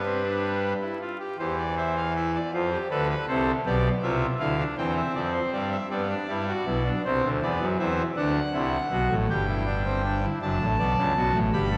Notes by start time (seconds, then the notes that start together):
Already playing: G2 G3 B4
0.05 C4
0.24 D4
0.81 E4
1.01 F4
1.20 G4
1.39 E2 E3 G4 C5
1.58 D5
1.77 C5 E5
1.96 F5
2.15 E4 E5
2.35 D5
2.53 F2 F3 F4 C5
2.72 G4
2.91 D2 D3 A4 B4
3.10 B4
3.28 C2 C3 A4 C5
3.66 B1 B2 G4 D5
4.03 C2 C3 F4 E5
4.40 D2 D3 E4 F5
4.59 D4
4.77 E2 E3 C4 G5
4.96 E5
5.15 F2 F3 D5
5.34 C5
5.53 G2 G3 D5
5.72 E5
5.90 G2 G3 B3 D5
6.10 D4
6.28 G2 G3 E4
6.48 F#4
6.66 B1 B2 E4
6.85 D4
7.05 C2 C3 C4 C5
7.23 D2 D3
7.42 E2 E3 B3 D5
7.60 F#2 F#3
7.79 E2 E3 C4 E5
8.16 D2 D3 D4 F#5
8.53 C2 C3 E4
8.91 B1 B2 F#4
9.10 A1 A2
9.29 G1 G2 G4 G5
9.48 E4
9.66 D4
9.85 C4
10.04 D4
10.23 E4
10.42 F#1 F#2 D4 A5
10.60 A1 A2
10.79 B1 B2 D5
10.97 C#2 C#3
11.16 B1 B2 F#4
11.34 A1 A2
11.53 G1 G2 G4 B5
11.72 A4